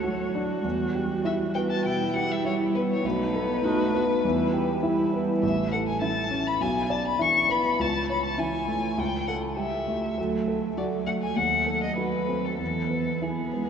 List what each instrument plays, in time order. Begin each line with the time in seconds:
Already playing: grand piano D2 A4, viola F#4, violin C#5
0.04 cello F#3, grand piano F#4
0.35 grand piano D4
0.64 grand piano E2, cello G3
0.95 grand piano G4
1.25 grand piano E4, violin E5
1.54 grand piano B3, violin G5
1.71 violin A5
1.85 grand piano B2, viola E4, violin G5
2.16 grand piano G4, violin F#5
2.32 violin E5
2.45 grand piano E4, violin C#5
2.75 grand piano B3, violin B4
2.92 violin C#5
3.04 grand piano B1, cello A3, viola D#4, violin B4
3.34 cello B3, grand piano A4
3.64 cello A3, grand piano D#4, viola F#4
3.94 grand piano B3, viola F#4
4.25 grand piano E2, cello G3, viola E4
4.53 grand piano G4
4.83 cello G3, grand piano E4, viola E4
5.13 grand piano B3
5.43 grand piano A1, violin E5
5.72 grand piano A4, violin F#5
5.88 violin G#5
6.01 cello E3, viola C#4, grand piano E4, violin A5
6.31 grand piano C#4
6.47 violin B5
6.60 grand piano B1, violin G#5
6.90 grand piano D5, violin A5
7.08 violin B5
7.19 cello E3, viola D4, grand piano E4, violin C#6
7.49 grand piano B3, violin B5
7.79 grand piano C#2, violin A5
8.10 grand piano C#5, violin B5
8.25 violin A5
8.38 cello E3, viola C#4, grand piano E4, violin G#5
8.67 grand piano A3
8.98 grand piano C#2, violin G5
9.28 grand piano A4, violin F#5
9.57 cello G3, viola A3, grand piano G4, violin E5
9.87 grand piano A3
10.16 grand piano D2, cello F#3, viola A3
10.48 grand piano A4
10.77 cello F#3, viola A3, grand piano F#4, violin D5
11.07 grand piano A3, violin F#5
11.23 violin G#5
11.36 grand piano D#2, cello F#3, viola A3, violin F#5
11.66 grand piano A4
11.83 violin D#5
11.97 grand piano F#4, violin B4
12.28 grand piano C4
12.45 violin A4
12.59 grand piano E2, cello E3, viola B3, violin A4
12.90 grand piano B4
13.22 cello E3, viola B3, grand piano E4, violin G#4
13.52 cello G#3, grand piano B3